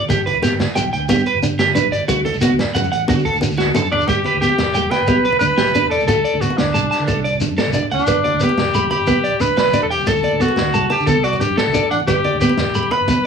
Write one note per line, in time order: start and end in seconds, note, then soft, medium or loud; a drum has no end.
0.02 high conga medium
0.09 0.29 G1 medium
0.09 0.21 G4 medium
0.09 muted steel-string acoustic guitar stroke medium
0.09 kick medium
0.09 closed hi-hat medium
0.09 muted conga medium
0.09 low conga medium
0.09 shekere medium
0.26 0.37 B4 medium
0.26 closed hi-hat soft
0.26 high conga medium
0.26 low conga soft
0.34 0.48 E1 medium
0.34 low conga medium
0.42 0.60 B3 medium
0.42 0.54 G4 medium
0.42 snare soft
0.42 closed hi-hat soft
0.42 muted conga medium
0.42 shekere medium
0.52 0.64 G1 loud
0.60 snare medium
0.60 closed hi-hat medium
0.60 high conga medium
0.60 low conga medium
0.75 0.89 B1 medium
0.75 0.87 G5 medium
0.75 muted steel-string acoustic guitar stroke medium
0.75 closed hi-hat soft
0.75 muted conga medium
0.75 shekere loud
0.83 high conga medium
0.83 low conga medium
0.93 1.06 D2 medium
0.93 1.04 G5 medium
0.93 closed hi-hat soft
1.08 1.22 G2 loud
1.08 1.26 B3 medium
1.08 1.21 G4 medium
1.08 kick medium
1.08 closed hi-hat medium
1.08 muted conga medium
1.08 high conga medium
1.08 low conga medium
1.08 shekere loud
1.18 shekere soft
1.26 1.38 B4 medium
1.26 closed hi-hat soft
1.26 low conga soft
1.34 1.41 G1 medium
1.34 low conga medium
1.43 1.60 D4 medium
1.43 closed hi-hat soft
1.43 high conga medium
1.43 low conga soft
1.43 shekere loud
1.51 1.70 G1 medium
1.59 1.70 G4 medium
1.59 snare medium
1.59 closed hi-hat medium
1.59 low conga medium
1.67 high conga medium
1.67 low conga soft
1.75 1.89 B1 medium
1.75 1.92 D4 medium
1.75 1.86 B4 medium
1.75 closed hi-hat medium
1.75 muted conga medium
1.75 shekere medium
1.84 low conga medium
1.92 1.99 G1 medium
1.92 2.03 D5 medium
1.92 closed hi-hat medium
1.92 low conga soft
1.92 shekere soft
2.00 high conga medium
2.08 2.28 D2 medium
2.08 2.26 A3 medium
2.08 2.20 F#4 medium
2.08 kick medium
2.08 closed hi-hat medium
2.08 muted conga medium
2.08 low conga medium
2.08 shekere medium
2.25 2.36 A4 medium
2.25 closed hi-hat soft
2.25 high conga medium
2.25 low conga soft
2.34 2.47 C2 medium
2.34 low conga medium
2.34 shekere soft
2.41 2.59 B3 medium
2.41 2.53 F#4 medium
2.41 closed hi-hat soft
2.41 muted conga medium
2.41 shekere loud
2.51 2.63 D2 medium
2.59 snare medium
2.59 closed hi-hat medium
2.59 high conga medium
2.59 low conga medium
2.75 2.88 F#2 medium
2.75 2.93 A3 medium
2.75 2.86 F#5 medium
2.75 closed hi-hat soft
2.75 muted conga medium
2.75 shekere medium
2.84 high conga medium
2.84 low conga medium
2.84 shekere soft
2.92 3.05 A1 medium
2.92 3.03 F#5 medium
2.92 closed hi-hat soft
3.08 3.21 D3 loud
3.08 3.25 B3 medium
3.08 3.20 F#4 medium
3.08 kick medium
3.08 closed hi-hat medium
3.08 muted conga medium
3.08 high conga medium
3.08 low conga medium
3.08 shekere medium
3.19 shekere soft
3.25 3.36 A4 medium
3.25 kick medium
3.25 closed hi-hat soft
3.25 low conga soft
3.33 3.40 D2 medium
3.33 low conga medium
3.33 shekere soft
3.41 3.59 D4 medium
3.41 closed hi-hat soft
3.41 muted conga medium
3.41 high conga medium
3.41 shekere medium
3.49 3.69 D2 medium
3.49 low conga soft
3.49 shekere soft
3.58 3.70 F#4 medium
3.58 snare soft
3.58 low conga medium
3.58 shekere soft
3.66 high conga medium
3.66 low conga soft
3.74 3.88 F#2 medium
3.74 3.92 D4 medium
3.74 3.87 A4 medium
3.74 mid tom medium
3.74 muted conga medium
3.74 shekere medium
3.83 low conga medium
3.83 shekere soft
3.91 3.98 G#1 medium
3.91 4.09 D4 medium
3.91 4.03 D5 medium
3.91 floor tom medium
3.99 high conga medium
3.99 shekere soft
4.08 4.21 G1 medium
4.08 4.25 A3 medium
4.08 4.40 G4 medium
4.08 4.20 G4 medium
4.08 kick medium
4.08 closed hi-hat medium
4.08 muted conga medium
4.08 low conga medium
4.08 shekere medium
4.24 4.37 B4 medium
4.24 closed hi-hat soft
4.24 high conga medium
4.33 4.46 D2 medium
4.33 low conga medium
4.41 4.59 B3 medium
4.41 4.92 G4 medium
4.41 4.53 G4 medium
4.41 closed hi-hat soft
4.41 shekere medium
4.49 muted conga medium
4.58 4.72 E1 medium
4.58 snare medium
4.58 closed hi-hat medium
4.58 high conga medium
4.58 low conga medium
4.74 4.88 E1 medium
4.74 4.93 A3 medium
4.74 4.86 G5 medium
4.74 closed hi-hat soft
4.74 shekere medium
4.83 high conga medium
4.90 5.38 B4 medium
4.90 5.03 G5 medium
4.90 snare soft
4.90 closed hi-hat soft
4.90 muted conga medium
4.90 low conga soft
5.01 5.07 G1 medium
5.07 5.25 B3 medium
5.07 5.19 G4 medium
5.07 kick medium
5.07 closed hi-hat medium
5.07 high conga medium
5.07 low conga medium
5.07 shekere medium
5.16 5.29 B1 medium
5.25 5.36 B4 medium
5.25 closed hi-hat soft
5.32 muted conga medium
5.32 low conga medium
5.39 5.48 D2 medium
5.39 5.58 D4 medium
5.39 5.87 B4 loud
5.39 closed hi-hat soft
5.39 high conga medium
5.39 shekere medium
5.50 low conga soft
5.57 5.71 B1 medium
5.57 5.69 G4 medium
5.57 snare medium
5.57 closed hi-hat medium
5.57 low conga medium
5.57 shekere soft
5.66 high conga medium
5.66 shekere soft
5.74 5.92 D4 medium
5.74 5.86 B4 medium
5.74 closed hi-hat soft
5.74 muted conga medium
5.74 shekere medium
5.83 5.96 E1 medium
5.83 low conga medium
5.89 6.06 A4 medium
5.89 6.03 D5 medium
5.89 closed hi-hat soft
5.89 low conga soft
6.00 6.06 C2 medium
6.00 high conga medium
6.00 shekere soft
6.07 6.21 D2 medium
6.07 6.25 A3 medium
6.07 6.42 A4 medium
6.07 6.19 A4 medium
6.07 kick medium
6.07 closed hi-hat medium
6.07 muted conga medium
6.07 low conga medium
6.07 shekere medium
6.24 6.36 D5 medium
6.24 closed hi-hat soft
6.34 6.46 D2 medium
6.34 low conga medium
6.41 6.58 B3 medium
6.41 6.59 F#4 medium
6.41 muted clean electric guitar stroke medium
6.41 closed hi-hat medium
6.41 shekere medium
6.50 muted conga medium
6.57 6.71 D2 medium
6.57 7.24 D4 medium
6.57 snare medium
6.57 closed hi-hat medium
6.57 high conga loud
6.57 low conga medium
6.74 6.88 C2 medium
6.74 6.91 A3 medium
6.74 6.86 A5 medium
6.74 closed hi-hat soft
6.74 shekere medium
6.83 high conga medium
6.83 low conga medium
6.91 7.02 A5 medium
6.91 snare soft
6.91 closed hi-hat soft
7.00 7.12 D3 medium
7.07 7.26 D4 medium
7.07 7.19 A4 medium
7.07 kick medium
7.07 closed hi-hat medium
7.07 high conga medium
7.07 low conga medium
7.07 shekere medium
7.17 7.42 C2 medium
7.24 7.36 D5 medium
7.24 closed hi-hat soft
7.33 low conga medium
7.41 7.59 D4 medium
7.41 closed hi-hat soft
7.41 high conga medium
7.41 shekere medium
7.50 7.56 F#2 medium
7.50 low conga soft
7.57 7.69 A4 medium
7.57 snare medium
7.57 closed hi-hat medium
7.57 low conga medium
7.57 shekere soft
7.65 7.79 C2 medium
7.65 high conga medium
7.65 shekere soft
7.73 7.93 D4 medium
7.73 7.86 D5 medium
7.73 closed hi-hat soft
7.73 muted conga medium
7.73 shekere medium
7.83 low conga medium
7.91 7.98 D2 medium
7.91 8.44 D4 medium
7.91 8.03 F#5 medium
7.91 closed hi-hat soft
7.91 low conga soft
7.99 high conga medium
7.99 shekere soft
8.07 8.21 G1 medium
8.07 8.26 A3 medium
8.07 8.19 B4 medium
8.07 kick medium
8.07 closed hi-hat medium
8.07 muted conga medium
8.07 low conga medium
8.07 shekere medium
8.24 8.35 D5 medium
8.24 closed hi-hat soft
8.24 high conga medium
8.32 8.46 D2 medium
8.32 low conga medium
8.40 8.60 B3 medium
8.40 8.91 G4 medium
8.40 8.52 B4 medium
8.40 closed hi-hat soft
8.40 shekere medium
8.49 muted conga medium
8.58 8.70 E1 medium
8.58 snare medium
8.58 closed hi-hat medium
8.58 high conga medium
8.58 low conga medium
8.74 8.88 E1 medium
8.74 8.92 A3 medium
8.74 8.86 B5 medium
8.74 closed hi-hat soft
8.74 shekere medium
8.83 high conga medium
8.83 low conga medium
8.91 9.42 G4 medium
8.91 9.02 B5 medium
8.91 closed hi-hat soft
8.91 muted conga medium
8.91 low conga soft
9.00 9.06 G1 medium
9.07 9.25 B3 medium
9.07 9.19 B4 medium
9.07 kick medium
9.07 closed hi-hat medium
9.07 high conga medium
9.07 low conga medium
9.07 shekere medium
9.17 9.29 B1 medium
9.24 9.35 D5 medium
9.24 closed hi-hat soft
9.32 low conga medium
9.40 9.47 D2 medium
9.40 9.58 D4 medium
9.40 9.57 B4 medium
9.40 closed hi-hat soft
9.40 high conga medium
9.40 shekere medium
9.48 low conga soft
9.57 9.70 B1 medium
9.57 9.69 B4 medium
9.57 9.82 B4 loud
9.57 snare medium
9.57 closed hi-hat medium
9.57 low conga medium
9.57 shekere soft
9.65 high conga medium
9.65 shekere soft
9.73 9.91 D4 medium
9.73 9.85 D5 medium
9.73 closed hi-hat soft
9.73 muted conga medium
9.73 shekere medium
9.82 9.96 E1 medium
9.82 9.86 A4 medium
9.82 low conga medium
9.90 10.09 G4 medium
9.90 10.02 G5 medium
9.90 closed hi-hat medium
9.90 low conga soft
9.99 10.06 B1 medium
9.99 high conga medium
9.99 shekere soft
10.07 10.20 D2 medium
10.07 10.24 A3 medium
10.07 10.18 A4 medium
10.07 10.42 A4 medium
10.07 kick medium
10.07 closed hi-hat medium
10.07 muted conga medium
10.07 low conga medium
10.07 shekere medium
10.16 shekere soft
10.23 10.35 D5 medium
10.23 closed hi-hat soft
10.23 high conga medium
10.23 low conga soft
10.32 10.46 D2 medium
10.32 low conga medium
10.40 10.57 B3 medium
10.40 10.91 F#4 medium
10.40 10.52 A4 medium
10.40 closed hi-hat soft
10.40 shekere medium
10.48 muted conga medium
10.56 10.70 D2 medium
10.56 snare medium
10.56 closed hi-hat medium
10.56 high conga medium
10.56 low conga medium
10.56 shekere soft
10.74 10.87 C2 medium
10.74 10.92 A3 medium
10.74 10.85 A5 medium
10.74 closed hi-hat soft
10.74 shekere medium
10.82 high conga medium
10.82 low conga medium
10.90 11.07 G4 medium
10.90 11.02 A5 medium
10.90 closed hi-hat soft
10.90 muted conga medium
10.90 low conga soft
11.00 11.12 D3 medium
11.00 shekere soft
11.06 11.24 B3 medium
11.06 11.18 A4 medium
11.06 11.26 A4 medium
11.06 kick medium
11.06 closed hi-hat medium
11.06 high conga medium
11.06 low conga medium
11.06 shekere medium
11.16 11.41 C2 medium
11.16 low conga soft
11.24 11.42 F#4 medium
11.24 11.35 D5 medium
11.24 closed hi-hat soft
11.24 shekere soft
11.33 muted conga medium
11.33 low conga medium
11.33 shekere soft
11.40 11.58 D4 medium
11.40 11.57 G4 medium
11.40 closed hi-hat soft
11.40 high conga medium
11.40 shekere medium
11.50 11.56 F#2 medium
11.57 11.69 A4 medium
11.57 11.89 A4 medium
11.57 snare medium
11.57 closed hi-hat medium
11.57 low conga medium
11.66 11.79 C2 medium
11.66 high conga medium
11.66 low conga soft
11.73 11.90 D4 medium
11.73 11.85 D5 medium
11.73 kick medium
11.73 closed hi-hat soft
11.73 muted conga medium
11.73 low conga soft
11.73 shekere medium
11.84 low conga medium
11.90 11.98 A1 medium
11.90 11.98 D4 medium
11.90 12.02 F#5 medium
11.90 closed hi-hat soft
12.00 high conga medium
12.07 12.21 G1 medium
12.07 12.25 A3 medium
12.07 12.38 G4 medium
12.07 12.19 B4 medium
12.07 kick medium
12.07 closed hi-hat medium
12.07 muted conga medium
12.07 low conga medium
12.07 shekere medium
12.24 12.36 D5 medium
12.24 closed hi-hat soft
12.24 high conga medium
12.33 12.46 D2 medium
12.33 low conga medium
12.41 12.59 B3 medium
12.41 12.93 G4 medium
12.41 12.53 B4 medium
12.41 closed hi-hat medium
12.41 shekere medium
12.49 muted conga medium
12.57 12.71 E1 medium
12.57 snare medium
12.57 closed hi-hat medium
12.57 high conga medium
12.57 low conga medium
12.74 12.87 E1 medium
12.74 12.92 A3 medium
12.74 12.86 B5 medium
12.74 closed hi-hat soft
12.74 shekere medium
12.83 high conga medium
12.83 low conga medium
12.91 13.27 B4 medium
12.91 13.03 B5 medium
12.91 closed hi-hat soft
12.91 muted conga medium
12.91 low conga soft
13.00 13.06 G1 medium
13.08 13.25 B3 medium
13.08 13.20 B4 medium
13.08 kick medium
13.08 closed hi-hat medium
13.08 high conga medium
13.08 low conga medium
13.08 shekere medium
13.17 13.27 B1 medium